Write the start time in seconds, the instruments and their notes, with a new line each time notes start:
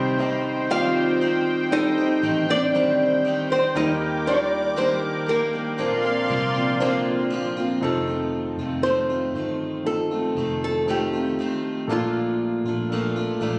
Already playing: fingered electric bass C2, steel-string acoustic guitar C3 D#3 C4 D#4 G4, grand piano C3 G3 C4 D#4 C5, analog synth pad C5 G5
0.18 steel-string acoustic guitar D#3 C4 D#4, grand piano G3 C4 D#4 D#5
0.22 steel-string acoustic guitar G4
0.70 steel-string acoustic guitar C3 D#3 C4 D#4 G4, grand piano G3 C4 D#4 D5, nylon-string guitar F4 F5
1.21 steel-string acoustic guitar D#3 C4 D#4 G4
1.71 grand piano G3 C4 D#4 A4, nylon-string guitar D#4 D#5
1.98 steel-string acoustic guitar C4 D#4 G4
2.23 fingered electric bass A1, steel-string acoustic guitar D#3 C4 D#4 G4
2.49 steel-string acoustic guitar C4 D#4 G4, nylon-string guitar D4 D5
2.72 steel-string acoustic guitar C3 D#3 C4, grand piano D#3 G3 C4 C5
2.77 steel-string acoustic guitar G4
3.25 steel-string acoustic guitar D#3 C4 D#4 G4
3.50 nylon-string guitar C4 C5, steel-string acoustic guitar C4 D#4 G4
3.75 fingered electric bass D#2, grand piano D#3 G3 A#3 D#4 A#4, steel-string acoustic guitar D#3 G3 A#3 G4, nylon-string guitar D#4 D#5, analog synth pad A#4 D6
4.26 grand piano G3 D4 F4 G4, steel-string acoustic guitar G3 A#3 D4 G4, nylon-string guitar D4 D5
4.76 steel-string acoustic guitar D#3 G3 A#3 D4 G4, grand piano G3 D4 D#4 A#4, nylon-string guitar C4 C5
5.26 steel-string acoustic guitar G3 A#3 D4 G4, nylon-string guitar A#3 A#4
5.53 steel-string acoustic guitar A#3 D4 G4
5.78 fingered electric bass A#1, steel-string acoustic guitar A#2 D3 F3 A#3 C4 F4, grand piano A#2 F3 C4 D4 A#4, analog synth pad D5 F5 C6
6.03 steel-string acoustic guitar F3 A#3 C4 F4
6.28 fingered electric bass C2, steel-string acoustic guitar F3 A#3 C4 F4
6.55 steel-string acoustic guitar F3 A#3 C4 F4
6.79 steel-string acoustic guitar A#2 D3 F3 A#3 C4 F4, grand piano F3 C4 D4 A#4
7.30 steel-string acoustic guitar F3 A#3 C4 F4
7.57 steel-string acoustic guitar F3 A#3 C4 F4
7.81 fingered electric bass F1, steel-string acoustic guitar F2 C3 D#3 A3 C4 F4, grand piano F3 D#4 A4
8.08 steel-string acoustic guitar D#3 A3 C4 F4
8.57 fingered electric bass F1, steel-string acoustic guitar A3 C4 F4
8.62 steel-string acoustic guitar D#3
8.83 steel-string acoustic guitar F2 C3 D#3 A3 C4, grand piano F3 D#4 A4, nylon-string guitar C5
8.87 steel-string acoustic guitar F4
9.10 steel-string acoustic guitar D#3 A3 C4 F4
9.34 fingered electric bass G1, steel-string acoustic guitar D#3 A3 C4, grand piano F3 D#4 C5
9.38 steel-string acoustic guitar F4
9.84 grand piano F3 D#4 A4, nylon-string guitar A4
10.11 steel-string acoustic guitar D#3 A3 C4 F4
10.35 fingered electric bass F1, steel-string acoustic guitar D#3 A3 C4
10.39 steel-string acoustic guitar F4
10.64 nylon-string guitar A4
10.86 steel-string acoustic guitar F2 C3 D#3 A3 C4, grand piano F3 D#4 A4
10.90 steel-string acoustic guitar F4, nylon-string guitar G4
11.13 steel-string acoustic guitar D#3 A3 C4 F4
11.39 steel-string acoustic guitar D#3 A3 C4 F4
11.88 fingered electric bass A#1, grand piano A#2 A#3 D4 A4, steel-string acoustic guitar A#2 F3 A3 D4
11.92 steel-string acoustic guitar F4, nylon-string guitar F4
12.64 fingered electric bass A#1, steel-string acoustic guitar D4 F4
12.69 steel-string acoustic guitar A3
12.89 steel-string acoustic guitar A#2 F3 A3 D4, grand piano D4 A4 A#4
12.94 steel-string acoustic guitar F4
13.16 steel-string acoustic guitar A3 D4 F4
13.40 fingered electric bass A#1, steel-string acoustic guitar F3 A3 D4 F4, grand piano A#3 D4 A4